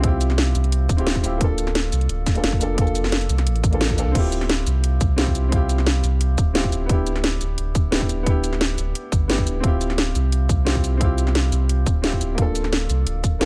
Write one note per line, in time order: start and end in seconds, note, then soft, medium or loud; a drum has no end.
0.00 0.54 C2 medium
0.00 0.97 C4 medium
0.00 0.02 E4 medium
0.00 0.96 E4 medium
0.00 0.05 F4 medium
0.00 0.07 G4 medium
0.00 kick loud
0.00 closed hi-hat medium
0.05 0.97 F4 medium
0.05 0.98 G4 medium
0.21 closed hi-hat medium
0.21 shaker medium
0.30 snare soft
0.38 snare loud
0.38 closed hi-hat medium
0.55 0.88 C2 loud
0.55 closed hi-hat medium
0.55 shaker medium
0.64 closed hi-hat soft
0.72 closed hi-hat loud
0.89 1.22 D1 medium
0.89 kick loud
0.89 closed hi-hat medium
0.89 shaker medium
0.97 1.21 C4 medium
0.97 1.21 E4 medium
0.97 1.22 F4 medium
0.97 1.23 G4 medium
0.97 closed hi-hat soft
1.07 snare loud
1.07 closed hi-hat medium
1.15 kick medium
1.22 1.91 D1 loud
1.22 1.38 C4 medium
1.22 1.39 E4 medium
1.22 1.39 F4 medium
1.22 1.40 G4 medium
1.22 closed hi-hat medium
1.22 shaker medium
1.37 2.32 A#3 medium
1.37 2.33 D4 medium
1.37 kick loud
1.37 closed hi-hat loud
1.42 2.34 F4 medium
1.42 2.35 A4 medium
1.58 closed hi-hat medium
1.58 shaker medium
1.67 snare soft
1.75 snare loud
1.75 closed hi-hat medium
1.92 2.08 C2 loud
1.92 closed hi-hat medium
1.92 shaker medium
2.01 closed hi-hat soft
2.09 2.42 D1 medium
2.09 closed hi-hat medium
2.26 kick loud
2.26 snare soft
2.26 closed hi-hat medium
2.26 shaker medium
2.34 2.58 A#3 medium
2.34 2.59 D4 medium
2.34 2.59 F4 medium
2.34 2.60 A4 medium
2.34 closed hi-hat soft
2.44 3.28 F1 medium
2.44 snare loud
2.44 closed hi-hat loud
2.53 kick medium
2.59 2.73 A#3 medium
2.59 2.75 D4 medium
2.59 2.76 F4 medium
2.59 2.77 A4 medium
2.59 closed hi-hat medium
2.59 shaker medium
2.74 3.69 A#3 medium
2.74 3.70 D4 medium
2.74 kick loud
2.74 closed hi-hat loud
2.79 3.71 F4 medium
2.79 3.72 A4 loud
2.87 shaker soft
2.95 closed hi-hat medium
2.95 shaker medium
3.04 snare soft
3.12 snare loud
3.12 closed hi-hat medium
3.21 closed hi-hat soft
3.21 shaker soft
3.29 3.48 C2 loud
3.29 closed hi-hat medium
3.29 shaker medium
3.38 snare soft
3.38 closed hi-hat soft
3.47 4.06 A1 loud
3.47 closed hi-hat loud
3.56 closed hi-hat soft
3.64 kick loud
3.64 closed hi-hat medium
3.64 shaker medium
3.71 3.95 A#3 medium
3.71 3.96 D4 medium
3.71 3.96 F4 medium
3.71 3.97 A4 medium
3.71 closed hi-hat soft
3.81 snare loud
3.81 closed hi-hat loud
3.90 kick medium
3.96 4.12 A#3 medium
3.96 4.13 D4 medium
3.96 4.13 F4 medium
3.96 4.14 A4 medium
3.96 closed hi-hat medium
3.96 shaker medium
4.07 4.14 C2 loud
4.12 4.65 D1 loud
4.12 5.06 C4 medium
4.12 5.07 E4 medium
4.12 kick loud
4.12 closed hi-hat loud
4.12 crash loud
4.16 5.08 F4 medium
4.16 5.09 G4 loud
4.32 closed hi-hat medium
4.32 shaker medium
4.41 snare soft
4.49 snare loud
4.49 closed hi-hat loud
4.67 5.00 C2 medium
4.67 closed hi-hat medium
4.67 shaker medium
4.84 closed hi-hat loud
5.01 6.02 C2 medium
5.01 kick loud
5.01 closed hi-hat medium
5.01 shaker medium
5.16 5.26 C4 medium
5.16 5.27 E4 medium
5.16 5.28 F4 medium
5.16 5.28 G4 medium
5.16 snare loud
5.16 closed hi-hat loud
5.27 kick medium
5.35 closed hi-hat medium
5.35 shaker medium
5.49 6.43 C4 medium
5.49 6.44 E4 medium
5.49 kick loud
5.49 closed hi-hat loud
5.54 6.45 F4 medium
5.54 6.47 G4 medium
5.69 closed hi-hat medium
5.69 shaker medium
5.78 snare soft
5.87 snare loud
5.87 closed hi-hat medium
6.04 6.37 C2 loud
6.04 closed hi-hat medium
6.04 shaker medium
6.21 closed hi-hat medium
6.38 6.71 D1 medium
6.38 kick loud
6.38 closed hi-hat medium
6.38 shaker medium
6.54 6.64 C4 medium
6.54 6.64 E4 medium
6.54 6.65 F4 medium
6.54 6.65 G4 medium
6.54 snare loud
6.54 closed hi-hat medium
6.64 kick medium
6.72 7.40 D1 loud
6.72 closed hi-hat medium
6.72 shaker medium
6.86 7.80 B3 medium
6.86 7.81 D4 medium
6.86 kick loud
6.86 closed hi-hat loud
6.91 7.83 E4 medium
6.91 7.84 G4 medium
7.07 closed hi-hat medium
7.07 shaker medium
7.16 snare soft
7.24 snare loud
7.24 closed hi-hat medium
7.41 7.56 D1 loud
7.41 closed hi-hat medium
7.41 shaker medium
7.58 7.91 D1 medium
7.58 closed hi-hat loud
7.75 kick loud
7.75 closed hi-hat medium
7.75 shaker medium
7.91 8.77 D1 medium
7.91 8.01 B3 medium
7.91 8.01 D4 medium
7.91 8.02 E4 medium
7.91 8.02 G4 medium
7.91 snare loud
7.91 closed hi-hat medium
8.01 kick medium
8.09 closed hi-hat medium
8.09 shaker medium
8.23 9.17 B3 medium
8.23 9.18 D4 medium
8.23 kick loud
8.23 closed hi-hat medium
8.28 9.20 E4 medium
8.28 9.21 G4 medium
8.44 closed hi-hat medium
8.44 shaker medium
8.53 snare soft
8.61 snare loud
8.61 closed hi-hat medium
8.78 8.93 D1 loud
8.78 closed hi-hat medium
8.78 shaker medium
8.95 closed hi-hat medium
9.12 9.45 G1 medium
9.12 kick loud
9.12 closed hi-hat medium
9.12 shaker medium
9.28 9.38 B3 medium
9.28 9.38 D4 medium
9.28 9.39 E4 medium
9.28 9.40 G4 medium
9.28 snare loud
9.28 closed hi-hat medium
9.38 kick medium
9.47 9.62 D1 medium
9.47 closed hi-hat medium
9.47 shaker medium
9.60 10.14 D1 loud
9.60 10.54 C4 medium
9.60 10.56 E4 medium
9.60 kick loud
9.60 closed hi-hat medium
9.65 10.57 F4 medium
9.65 10.58 G4 medium
9.81 closed hi-hat medium
9.81 shaker medium
9.90 snare soft
9.98 snare loud
9.98 closed hi-hat medium
10.15 10.48 C2 loud
10.15 closed hi-hat medium
10.15 shaker medium
10.32 closed hi-hat medium
10.49 11.51 C2 medium
10.49 kick loud
10.49 closed hi-hat medium
10.49 shaker medium
10.65 10.75 C4 medium
10.65 10.75 E4 medium
10.65 10.76 F4 medium
10.65 10.77 G4 medium
10.65 snare loud
10.65 closed hi-hat medium
10.75 kick medium
10.84 closed hi-hat medium
10.84 shaker medium
10.97 11.92 C4 medium
10.97 11.93 E4 medium
10.97 kick loud
10.97 closed hi-hat loud
11.02 11.94 F4 medium
11.02 11.95 G4 loud
11.18 closed hi-hat medium
11.18 shaker medium
11.27 snare soft
11.35 snare loud
11.35 closed hi-hat medium
11.52 11.85 C2 loud
11.52 closed hi-hat medium
11.52 shaker medium
11.69 closed hi-hat loud
11.86 12.19 D1 medium
11.86 kick loud
11.86 closed hi-hat medium
11.86 shaker medium
12.02 12.12 C4 medium
12.02 12.13 E4 medium
12.02 12.13 F4 medium
12.02 12.14 G4 medium
12.02 snare loud
12.02 closed hi-hat loud
12.13 kick medium
12.21 12.88 D1 loud
12.21 closed hi-hat medium
12.21 shaker medium
12.35 13.29 A#3 medium
12.35 13.30 D4 medium
12.35 kick loud
12.35 closed hi-hat loud
12.39 13.31 F4 medium
12.39 13.32 A4 medium
12.55 closed hi-hat medium
12.55 shaker medium
12.64 snare soft
12.73 snare loud
12.73 closed hi-hat medium
12.89 13.05 C2 loud
12.89 closed hi-hat medium
12.89 shaker medium
13.07 13.40 D1 medium
13.07 closed hi-hat loud
13.24 kick loud
13.24 closed hi-hat medium
13.24 shaker medium
13.39 13.45 F1 medium
13.39 13.45 A#3 medium
13.39 13.45 D4 medium
13.39 13.45 F4 medium
13.39 snare loud
13.39 closed hi-hat loud